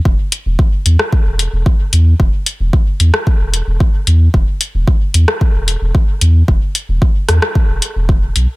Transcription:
0.05 E1, kick
0.32 closed hi-hat
0.46 E1
0.59 kick
0.86 E2, closed hi-hat
0.99 cross-stick
1.12 kick
1.26 E1
1.39 closed hi-hat
1.53 E1
1.66 kick
1.93 E2, closed hi-hat
2.20 E1, kick
2.46 closed hi-hat
2.60 E1
2.73 kick
3.00 E2, closed hi-hat
3.14 cross-stick
3.27 kick
3.40 E1
3.54 closed hi-hat
3.67 E1
3.80 kick
4.07 E2, closed hi-hat
4.34 E1, kick
4.61 closed hi-hat
4.75 E1
4.88 kick
5.14 E2, closed hi-hat
5.28 cross-stick
5.41 kick
5.55 E1
5.68 closed hi-hat
5.82 E1
5.95 kick
6.21 E2, closed hi-hat
6.48 E1, kick
6.75 closed hi-hat
6.89 E1
7.02 kick
7.29 E2, cross-stick, closed hi-hat
7.42 cross-stick
7.55 kick
7.69 E1
7.82 closed hi-hat
7.96 E1
8.09 kick
8.36 B1, closed hi-hat

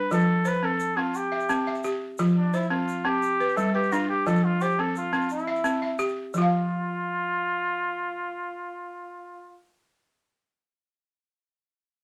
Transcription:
Already playing: D4 B4
0.11 F3 F4 A4, shaker
0.19 shaker
0.45 B4 C5, shaker
0.54 shaker
0.63 C4 A4
0.80 shaker
0.97 C4 F4
1.14 G4, shaker
1.32 E5
1.40 shaker
1.49 C4, shaker
1.67 E5
1.75 shaker
1.83 G4, shaker
2.18 F3 F4, shaker
2.36 D4
2.53 E4 C5, shaker
2.70 C4 F4
2.88 shaker
3.05 C4 G4
3.22 shaker
3.40 B4, shaker
3.49 shaker
3.56 G3 A4, shaker
3.74 G4 B4
3.83 shaker
3.92 D4 F4, shaker
4.09 G4
4.26 F3 F4 A4, shaker
4.36 shaker
4.44 F4
4.61 G4 C5, shaker
4.70 shaker
4.79 C4 A4
4.95 F4, shaker
5.13 C4 F4, shaker
5.21 shaker
5.29 E4, shaker
5.38 shaker
5.47 E5
5.56 shaker
5.64 C4, shaker
5.82 E5
5.99 G4, shaker
6.08 shaker
6.34 F3 F4, shaker
6.38 F4
6.42 F5

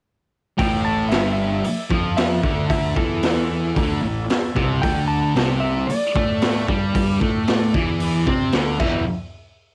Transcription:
0.58 A1 A2 E4 A4 E5 G5, kick, open hi-hat
0.85 A5
1.09 G1 G2 E4 A4 E5, snare, open hi-hat
1.33 E5
1.64 E4 A4 D5, muted picked electric bass stroke, muted distorted electric guitar stroke, open hi-hat
1.90 F2 F3, kick
2.16 E4 A4 E5 F#5, snare, open hi-hat
2.43 D2 D3, kick
2.69 E4 A4 E5, kick, open hi-hat
2.96 E2 E3 A4, kick
3.23 snare, open hi-hat
3.27 E4 A4 E5
3.76 D2 D3 E4 A4, kick, open hi-hat
3.80 E5
4.02 A1 A2
4.30 E4 A4 E5, snare, open hi-hat
4.55 C2 C3, kick
4.82 D2 D3 D4 A4 G5, kick, open hi-hat
4.86 D5
5.08 A5
5.36 C2 C3 D4 A4 D5, snare, open hi-hat
5.60 E5
5.87 D4 A4 D5, muted picked electric bass stroke, muted distorted electric guitar stroke, open hi-hat
5.92 D5
6.15 A2 A3, kick
6.42 D4 A4 D5, snare, open hi-hat
6.68 G2 G3, kick
6.95 D4 A4 D5, kick, open hi-hat
7.21 A2 A3, kick
7.47 D4 A4 D5, snare, open hi-hat
7.74 E2 E3, kick
8.00 D4 A4 D5, open hi-hat
8.27 C3 C4, kick
8.52 D2 D3 D4 A4 D5, snare, open hi-hat
8.79 E1 E2 B2 E3 E4 G4 B4 E5, kick, crash

